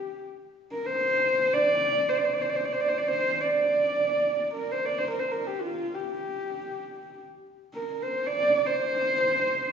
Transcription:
Already playing: G4
0.72 A#4
0.86 C5
1.53 D5
2.09 C5
2.18 D5
2.25 C5
2.33 D5
2.41 C5
2.49 D5
2.56 C5
2.65 D5
2.72 C5
2.81 D5
2.88 C5
2.98 D5
3.08 C5
3.41 D5
4.54 A#4
4.72 C5
4.86 D5
4.98 C5
5.10 A#4
5.19 C5
5.32 A#4
5.46 G4
5.61 F4
5.95 G4
7.74 A#4
8.03 C5
8.27 D5
8.65 C5

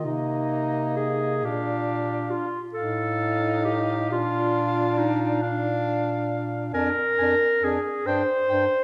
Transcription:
0.04 C3 A#3 D#4 D#5
0.96 G#4
1.43 A#2 D4 G4 F5
2.31 F4
2.73 A2 A4 F5
2.78 D#4
3.65 G4
4.10 A#2 D4 F4 F5
4.98 D#4
5.42 D4 F5
6.74 F2 D4 A#4 G#5
7.19 F2 D4 G#5
7.62 F2 D4 G#4 G#5
8.06 G2 D4 C5 G5
8.49 G2 D4 G5

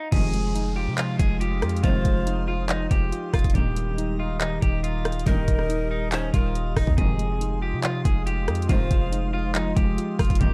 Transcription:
0.12 F1 G#2 C3 D#3 F3 G#3 G#4 F5 C6 D#6, kick, closed hi-hat, downlifter
0.33 G#3, closed hi-hat
0.55 D#4, closed hi-hat
0.76 F4 G4
0.87 C3
0.98 F3 F4, clap, closed hi-hat
1.19 F1 G#3 G#4, kick, closed hi-hat
1.41 F4 G4, closed hi-hat
1.62 F2 F4, cross-stick, closed hi-hat
1.69 closed hi-hat
1.77 closed hi-hat
1.83 F1 G#2 C3 D#3 F3 F4 C5, kick, closed hi-hat
2.05 F1 G#3, kick, closed hi-hat
2.26 D#4, closed hi-hat
2.48 F4
2.69 F3 D#4, clap, closed hi-hat
2.91 F1 G#3 G4, kick, closed hi-hat
3.12 F4, closed hi-hat
3.34 F1 F4, kick, cross-stick, closed hi-hat, open hi-hat
3.39 closed hi-hat
3.44 F1, kick, closed hi-hat
3.50 closed hi-hat
3.55 D#1 G2 A#2 D#3 G4 D#5 A#5 D#6, kick, closed hi-hat
3.76 G3, closed hi-hat
3.98 D#4, closed hi-hat
4.19 F4 D#5
4.41 D#3 D#4, clap, closed hi-hat
4.62 D#1 G3 G4, kick, closed hi-hat
4.84 F4 D#5, closed hi-hat
5.05 D#5, cross-stick, closed hi-hat
5.12 closed hi-hat
5.19 closed hi-hat
5.26 D#1 G2 A#2 D#3 D#4 A#4, kick, closed hi-hat
5.47 D#1 G3, kick, closed hi-hat
5.59 cross-stick
5.69 D#4, closed hi-hat
5.90 D#4 D#5
6.12 D#3 C#4 C5, clap, closed hi-hat
6.34 D#1 G3 F4 A#4, kick, closed hi-hat
6.55 D#5, closed hi-hat
6.76 D#1 D#4 D#5, kick, cross-stick, open hi-hat
6.87 D#2, kick
6.97 F1 G#2 C3 D#3 F3 G#3 G#4 F5 C6, kick, closed hi-hat
7.19 G#3, closed hi-hat
7.41 D#4, closed hi-hat
7.62 F4 G4
7.73 C3
7.83 F3 F4, clap, closed hi-hat
8.05 F1 G#3 G#4, kick, closed hi-hat
8.26 F4 G4, closed hi-hat
8.48 F2 F4, cross-stick, closed hi-hat
8.55 closed hi-hat
8.62 closed hi-hat
8.69 F1 G#2 C3 D#3 F3 F4 C5, kick, closed hi-hat
8.90 F1 G#3, kick, closed hi-hat
9.12 D#4, closed hi-hat
9.34 F4
9.55 F3 D#4, clap, closed hi-hat
9.76 F1 G#3 G4, kick, closed hi-hat
9.98 F4, closed hi-hat
10.19 F1 F4, kick, cross-stick, closed hi-hat, open hi-hat
10.25 closed hi-hat
10.30 F1, kick, closed hi-hat
10.35 closed hi-hat
10.40 D#1 G2 A#2 D#3 G4 D#5 A#5, kick, closed hi-hat

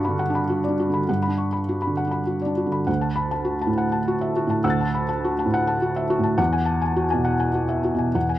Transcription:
Already playing: G2 D4 F#4 F#5 B5 C#6
0.05 D3 B5
0.19 F#5
0.30 D4
0.35 B5
0.50 F#4
0.64 D5
0.68 D4
0.80 F#4
0.90 D3
0.94 B5
1.09 G2 F#5
1.23 B5
1.28 D4
1.38 C#6
1.53 B5
1.69 D4 F#4
1.82 B5
1.87 D3
1.97 F#5
2.07 D4
2.11 B5
2.27 F#4
2.42 D5
2.46 D4
2.57 F#4
2.67 D3
2.72 B5
2.87 D2 F#5
3.01 A5
3.16 B5
3.31 A5
3.45 F#4
3.61 A5
3.67 A2
3.78 F#5
3.92 A5
4.08 F#4
4.21 E5
4.36 F#4
4.47 A2 A5
4.64 D2 F#5 E6 F#6
4.70 A6
4.81 A5
4.95 B5
5.09 A5
5.25 F#4
5.39 A5
5.46 A2
5.54 F#5
5.67 A5
5.82 F#4
5.96 E5
6.10 F#4
6.19 A2
6.23 A5
6.38 E2 F#5
6.53 G#5
6.65 A5
6.82 G#5
6.96 F#4
7.10 B2 G#5
7.25 F#5
7.40 G#5
7.54 F#4
7.69 E5
7.84 F#4
7.95 B2 G#5
8.15 E2 F#5
8.29 G#5

